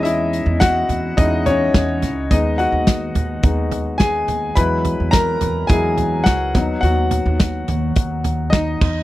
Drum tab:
CC |--------|--------|--------|-------x|
HH |xxxxxxxx|xxxxxxxx|xxxxxxxx|xxxxxxx-|
SD |--o---oo|--o---o-|--o---oo|--o---oo|
FT |---o-o-o|---o-o-o|-o-o-o-o|-o-o-o-o|
BD |--o-o-o-|o-o-o-o-|o-o-o-oo|--o-o-oo|